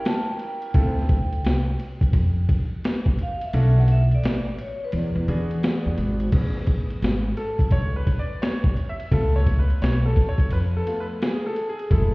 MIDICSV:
0, 0, Header, 1, 5, 480
1, 0, Start_track
1, 0, Key_signature, 3, "major"
1, 0, Tempo, 697674
1, 513, Time_signature, 4, 2, 24, 8
1, 8355, End_track
2, 0, Start_track
2, 0, Title_t, "Vibraphone"
2, 0, Program_c, 0, 11
2, 49, Note_on_c, 0, 81, 100
2, 205, Note_off_c, 0, 81, 0
2, 210, Note_on_c, 0, 79, 98
2, 894, Note_off_c, 0, 79, 0
2, 2221, Note_on_c, 0, 77, 98
2, 2365, Note_off_c, 0, 77, 0
2, 2377, Note_on_c, 0, 76, 101
2, 2608, Note_on_c, 0, 78, 103
2, 2609, Note_off_c, 0, 76, 0
2, 2686, Note_off_c, 0, 78, 0
2, 2696, Note_on_c, 0, 76, 101
2, 2843, Note_off_c, 0, 76, 0
2, 2853, Note_on_c, 0, 74, 92
2, 3172, Note_on_c, 0, 73, 93
2, 3175, Note_off_c, 0, 74, 0
2, 3321, Note_off_c, 0, 73, 0
2, 3333, Note_on_c, 0, 71, 94
2, 3408, Note_off_c, 0, 71, 0
2, 3415, Note_on_c, 0, 74, 88
2, 4096, Note_off_c, 0, 74, 0
2, 8355, End_track
3, 0, Start_track
3, 0, Title_t, "Upright piano"
3, 0, Program_c, 1, 0
3, 0, Note_on_c, 1, 61, 67
3, 0, Note_on_c, 1, 64, 62
3, 0, Note_on_c, 1, 67, 65
3, 0, Note_on_c, 1, 70, 77
3, 476, Note_off_c, 1, 61, 0
3, 479, Note_off_c, 1, 64, 0
3, 480, Note_off_c, 1, 67, 0
3, 480, Note_off_c, 1, 70, 0
3, 511, Note_on_c, 1, 60, 61
3, 513, Note_on_c, 1, 64, 55
3, 515, Note_on_c, 1, 65, 56
3, 516, Note_on_c, 1, 69, 70
3, 700, Note_off_c, 1, 60, 0
3, 701, Note_off_c, 1, 64, 0
3, 702, Note_off_c, 1, 65, 0
3, 703, Note_off_c, 1, 69, 0
3, 2432, Note_on_c, 1, 61, 65
3, 2433, Note_on_c, 1, 62, 57
3, 2437, Note_on_c, 1, 66, 62
3, 2438, Note_on_c, 1, 69, 70
3, 2734, Note_off_c, 1, 61, 0
3, 2734, Note_off_c, 1, 62, 0
3, 2736, Note_off_c, 1, 66, 0
3, 2737, Note_off_c, 1, 69, 0
3, 3633, Note_on_c, 1, 59, 60
3, 3637, Note_on_c, 1, 62, 59
3, 3638, Note_on_c, 1, 66, 62
3, 3639, Note_on_c, 1, 68, 70
3, 4318, Note_off_c, 1, 59, 0
3, 4321, Note_off_c, 1, 62, 0
3, 4321, Note_off_c, 1, 66, 0
3, 4322, Note_off_c, 1, 68, 0
3, 4350, Note_on_c, 1, 68, 49
3, 4355, Note_on_c, 1, 59, 51
3, 4361, Note_on_c, 1, 61, 54
3, 5072, Note_on_c, 1, 69, 87
3, 5313, Note_on_c, 1, 73, 107
3, 5320, Note_off_c, 1, 69, 0
3, 5461, Note_off_c, 1, 73, 0
3, 5477, Note_on_c, 1, 71, 88
3, 5637, Note_on_c, 1, 74, 95
3, 5640, Note_off_c, 1, 71, 0
3, 5793, Note_on_c, 1, 73, 98
3, 5799, Note_off_c, 1, 74, 0
3, 6119, Note_on_c, 1, 76, 95
3, 6122, Note_off_c, 1, 73, 0
3, 6244, Note_off_c, 1, 68, 0
3, 6246, Note_off_c, 1, 59, 0
3, 6249, Note_off_c, 1, 61, 0
3, 6269, Note_on_c, 1, 57, 54
3, 6271, Note_on_c, 1, 59, 49
3, 6276, Note_on_c, 1, 65, 53
3, 6280, Note_off_c, 1, 76, 0
3, 6283, Note_on_c, 1, 69, 97
3, 6438, Note_on_c, 1, 73, 98
3, 6442, Note_off_c, 1, 69, 0
3, 6599, Note_on_c, 1, 71, 83
3, 6600, Note_off_c, 1, 73, 0
3, 6745, Note_off_c, 1, 71, 0
3, 6757, Note_on_c, 1, 73, 106
3, 6904, Note_off_c, 1, 73, 0
3, 6919, Note_on_c, 1, 69, 90
3, 7065, Note_off_c, 1, 69, 0
3, 7078, Note_on_c, 1, 73, 97
3, 7224, Note_off_c, 1, 73, 0
3, 7242, Note_on_c, 1, 71, 95
3, 7277, Note_off_c, 1, 71, 0
3, 7407, Note_on_c, 1, 69, 90
3, 7465, Note_off_c, 1, 57, 0
3, 7468, Note_off_c, 1, 59, 0
3, 7470, Note_off_c, 1, 65, 0
3, 7475, Note_on_c, 1, 57, 48
3, 7478, Note_on_c, 1, 59, 43
3, 7481, Note_on_c, 1, 65, 52
3, 7549, Note_off_c, 1, 69, 0
3, 7570, Note_on_c, 1, 71, 87
3, 7604, Note_off_c, 1, 71, 0
3, 7690, Note_off_c, 1, 57, 0
3, 7692, Note_off_c, 1, 59, 0
3, 7693, Note_off_c, 1, 65, 0
3, 7728, Note_on_c, 1, 68, 92
3, 7869, Note_off_c, 1, 68, 0
3, 7887, Note_on_c, 1, 69, 91
3, 8044, Note_off_c, 1, 69, 0
3, 8044, Note_on_c, 1, 68, 90
3, 8186, Note_on_c, 1, 56, 52
3, 8187, Note_off_c, 1, 68, 0
3, 8192, Note_on_c, 1, 57, 49
3, 8196, Note_on_c, 1, 64, 62
3, 8202, Note_on_c, 1, 69, 84
3, 8355, Note_off_c, 1, 56, 0
3, 8355, Note_off_c, 1, 57, 0
3, 8355, Note_off_c, 1, 64, 0
3, 8355, Note_off_c, 1, 69, 0
3, 8355, End_track
4, 0, Start_track
4, 0, Title_t, "Upright bass"
4, 0, Program_c, 2, 32
4, 514, Note_on_c, 2, 38, 103
4, 994, Note_off_c, 2, 38, 0
4, 994, Note_on_c, 2, 36, 95
4, 1192, Note_off_c, 2, 36, 0
4, 1469, Note_on_c, 2, 41, 102
4, 1670, Note_off_c, 2, 41, 0
4, 2432, Note_on_c, 2, 35, 113
4, 2831, Note_off_c, 2, 35, 0
4, 2911, Note_on_c, 2, 33, 88
4, 3111, Note_off_c, 2, 33, 0
4, 3391, Note_on_c, 2, 40, 112
4, 3519, Note_off_c, 2, 40, 0
4, 3546, Note_on_c, 2, 40, 104
4, 3632, Note_on_c, 2, 52, 102
4, 3642, Note_off_c, 2, 40, 0
4, 3831, Note_off_c, 2, 52, 0
4, 4030, Note_on_c, 2, 40, 96
4, 4100, Note_off_c, 2, 40, 0
4, 4115, Note_on_c, 2, 32, 98
4, 4313, Note_off_c, 2, 32, 0
4, 4351, Note_on_c, 2, 33, 92
4, 4750, Note_off_c, 2, 33, 0
4, 4832, Note_on_c, 2, 32, 94
4, 5031, Note_off_c, 2, 32, 0
4, 5309, Note_on_c, 2, 37, 98
4, 5510, Note_off_c, 2, 37, 0
4, 6273, Note_on_c, 2, 37, 101
4, 6671, Note_off_c, 2, 37, 0
4, 6756, Note_on_c, 2, 35, 86
4, 6954, Note_off_c, 2, 35, 0
4, 7232, Note_on_c, 2, 41, 96
4, 7431, Note_off_c, 2, 41, 0
4, 8195, Note_on_c, 2, 30, 105
4, 8355, Note_off_c, 2, 30, 0
4, 8355, End_track
5, 0, Start_track
5, 0, Title_t, "Drums"
5, 37, Note_on_c, 9, 44, 51
5, 37, Note_on_c, 9, 51, 77
5, 42, Note_on_c, 9, 38, 121
5, 106, Note_off_c, 9, 44, 0
5, 106, Note_off_c, 9, 51, 0
5, 111, Note_off_c, 9, 38, 0
5, 270, Note_on_c, 9, 51, 47
5, 339, Note_off_c, 9, 51, 0
5, 426, Note_on_c, 9, 51, 49
5, 494, Note_off_c, 9, 51, 0
5, 510, Note_on_c, 9, 51, 91
5, 512, Note_on_c, 9, 36, 113
5, 579, Note_off_c, 9, 51, 0
5, 580, Note_off_c, 9, 36, 0
5, 681, Note_on_c, 9, 38, 33
5, 750, Note_off_c, 9, 38, 0
5, 750, Note_on_c, 9, 51, 59
5, 752, Note_on_c, 9, 36, 93
5, 818, Note_off_c, 9, 51, 0
5, 820, Note_off_c, 9, 36, 0
5, 912, Note_on_c, 9, 51, 39
5, 981, Note_off_c, 9, 51, 0
5, 995, Note_on_c, 9, 44, 52
5, 995, Note_on_c, 9, 51, 74
5, 1008, Note_on_c, 9, 38, 117
5, 1063, Note_off_c, 9, 44, 0
5, 1063, Note_off_c, 9, 51, 0
5, 1076, Note_off_c, 9, 38, 0
5, 1235, Note_on_c, 9, 51, 65
5, 1304, Note_off_c, 9, 51, 0
5, 1384, Note_on_c, 9, 36, 90
5, 1394, Note_on_c, 9, 51, 45
5, 1452, Note_off_c, 9, 36, 0
5, 1462, Note_off_c, 9, 51, 0
5, 1467, Note_on_c, 9, 36, 96
5, 1467, Note_on_c, 9, 51, 77
5, 1536, Note_off_c, 9, 36, 0
5, 1536, Note_off_c, 9, 51, 0
5, 1712, Note_on_c, 9, 36, 93
5, 1713, Note_on_c, 9, 51, 67
5, 1781, Note_off_c, 9, 36, 0
5, 1782, Note_off_c, 9, 51, 0
5, 1957, Note_on_c, 9, 44, 56
5, 1957, Note_on_c, 9, 51, 81
5, 1962, Note_on_c, 9, 38, 111
5, 2026, Note_off_c, 9, 44, 0
5, 2026, Note_off_c, 9, 51, 0
5, 2031, Note_off_c, 9, 38, 0
5, 2105, Note_on_c, 9, 36, 89
5, 2174, Note_off_c, 9, 36, 0
5, 2192, Note_on_c, 9, 51, 54
5, 2261, Note_off_c, 9, 51, 0
5, 2348, Note_on_c, 9, 51, 50
5, 2417, Note_off_c, 9, 51, 0
5, 2431, Note_on_c, 9, 51, 95
5, 2500, Note_off_c, 9, 51, 0
5, 2601, Note_on_c, 9, 38, 35
5, 2668, Note_on_c, 9, 51, 58
5, 2670, Note_off_c, 9, 38, 0
5, 2737, Note_off_c, 9, 51, 0
5, 2831, Note_on_c, 9, 51, 38
5, 2900, Note_off_c, 9, 51, 0
5, 2914, Note_on_c, 9, 44, 58
5, 2914, Note_on_c, 9, 51, 85
5, 2927, Note_on_c, 9, 38, 127
5, 2983, Note_off_c, 9, 44, 0
5, 2983, Note_off_c, 9, 51, 0
5, 2996, Note_off_c, 9, 38, 0
5, 3154, Note_on_c, 9, 51, 63
5, 3223, Note_off_c, 9, 51, 0
5, 3386, Note_on_c, 9, 51, 76
5, 3455, Note_off_c, 9, 51, 0
5, 3634, Note_on_c, 9, 51, 63
5, 3703, Note_off_c, 9, 51, 0
5, 3790, Note_on_c, 9, 51, 39
5, 3858, Note_off_c, 9, 51, 0
5, 3875, Note_on_c, 9, 44, 57
5, 3875, Note_on_c, 9, 51, 74
5, 3880, Note_on_c, 9, 38, 118
5, 3944, Note_off_c, 9, 44, 0
5, 3944, Note_off_c, 9, 51, 0
5, 3949, Note_off_c, 9, 38, 0
5, 4111, Note_on_c, 9, 51, 51
5, 4180, Note_off_c, 9, 51, 0
5, 4265, Note_on_c, 9, 51, 50
5, 4334, Note_off_c, 9, 51, 0
5, 4350, Note_on_c, 9, 49, 97
5, 4350, Note_on_c, 9, 51, 87
5, 4352, Note_on_c, 9, 36, 114
5, 4419, Note_off_c, 9, 49, 0
5, 4419, Note_off_c, 9, 51, 0
5, 4420, Note_off_c, 9, 36, 0
5, 4521, Note_on_c, 9, 38, 33
5, 4587, Note_on_c, 9, 51, 59
5, 4590, Note_off_c, 9, 38, 0
5, 4591, Note_on_c, 9, 36, 89
5, 4656, Note_off_c, 9, 51, 0
5, 4660, Note_off_c, 9, 36, 0
5, 4749, Note_on_c, 9, 51, 39
5, 4818, Note_off_c, 9, 51, 0
5, 4832, Note_on_c, 9, 44, 56
5, 4832, Note_on_c, 9, 51, 72
5, 4845, Note_on_c, 9, 38, 116
5, 4901, Note_off_c, 9, 44, 0
5, 4901, Note_off_c, 9, 51, 0
5, 4914, Note_off_c, 9, 38, 0
5, 5071, Note_on_c, 9, 51, 66
5, 5140, Note_off_c, 9, 51, 0
5, 5222, Note_on_c, 9, 36, 86
5, 5231, Note_on_c, 9, 51, 44
5, 5291, Note_off_c, 9, 36, 0
5, 5299, Note_off_c, 9, 51, 0
5, 5302, Note_on_c, 9, 51, 71
5, 5306, Note_on_c, 9, 36, 94
5, 5371, Note_off_c, 9, 51, 0
5, 5375, Note_off_c, 9, 36, 0
5, 5551, Note_on_c, 9, 36, 92
5, 5551, Note_on_c, 9, 51, 64
5, 5620, Note_off_c, 9, 36, 0
5, 5620, Note_off_c, 9, 51, 0
5, 5795, Note_on_c, 9, 44, 53
5, 5795, Note_on_c, 9, 51, 70
5, 5800, Note_on_c, 9, 38, 110
5, 5863, Note_off_c, 9, 44, 0
5, 5863, Note_off_c, 9, 51, 0
5, 5869, Note_off_c, 9, 38, 0
5, 5944, Note_on_c, 9, 36, 97
5, 6013, Note_off_c, 9, 36, 0
5, 6031, Note_on_c, 9, 51, 50
5, 6100, Note_off_c, 9, 51, 0
5, 6190, Note_on_c, 9, 51, 49
5, 6259, Note_off_c, 9, 51, 0
5, 6272, Note_on_c, 9, 36, 113
5, 6273, Note_on_c, 9, 51, 88
5, 6340, Note_off_c, 9, 36, 0
5, 6342, Note_off_c, 9, 51, 0
5, 6445, Note_on_c, 9, 38, 36
5, 6512, Note_on_c, 9, 36, 85
5, 6512, Note_on_c, 9, 51, 62
5, 6513, Note_off_c, 9, 38, 0
5, 6581, Note_off_c, 9, 36, 0
5, 6581, Note_off_c, 9, 51, 0
5, 6674, Note_on_c, 9, 51, 35
5, 6743, Note_off_c, 9, 51, 0
5, 6756, Note_on_c, 9, 44, 54
5, 6756, Note_on_c, 9, 51, 69
5, 6769, Note_on_c, 9, 38, 115
5, 6824, Note_off_c, 9, 44, 0
5, 6824, Note_off_c, 9, 51, 0
5, 6838, Note_off_c, 9, 38, 0
5, 6991, Note_on_c, 9, 36, 83
5, 6996, Note_on_c, 9, 51, 64
5, 7060, Note_off_c, 9, 36, 0
5, 7065, Note_off_c, 9, 51, 0
5, 7142, Note_on_c, 9, 36, 91
5, 7153, Note_on_c, 9, 51, 43
5, 7211, Note_off_c, 9, 36, 0
5, 7221, Note_off_c, 9, 51, 0
5, 7227, Note_on_c, 9, 51, 79
5, 7296, Note_off_c, 9, 51, 0
5, 7477, Note_on_c, 9, 51, 62
5, 7546, Note_off_c, 9, 51, 0
5, 7718, Note_on_c, 9, 44, 52
5, 7718, Note_on_c, 9, 51, 75
5, 7723, Note_on_c, 9, 38, 113
5, 7787, Note_off_c, 9, 44, 0
5, 7787, Note_off_c, 9, 51, 0
5, 7792, Note_off_c, 9, 38, 0
5, 7954, Note_on_c, 9, 51, 48
5, 8023, Note_off_c, 9, 51, 0
5, 8113, Note_on_c, 9, 51, 47
5, 8182, Note_off_c, 9, 51, 0
5, 8193, Note_on_c, 9, 36, 117
5, 8194, Note_on_c, 9, 51, 81
5, 8262, Note_off_c, 9, 36, 0
5, 8263, Note_off_c, 9, 51, 0
5, 8355, End_track
0, 0, End_of_file